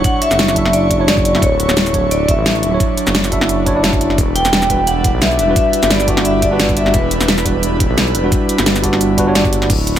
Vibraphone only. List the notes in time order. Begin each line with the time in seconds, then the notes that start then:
0.04 F#5
0.22 E5
0.73 D5
1.08 D5
1.42 C#5
2.11 D5
2.29 E5
4.36 G5
4.87 F#5
5.22 E5
5.56 E5
5.91 D5
6.25 E5
6.43 D5
6.77 E5
6.95 B4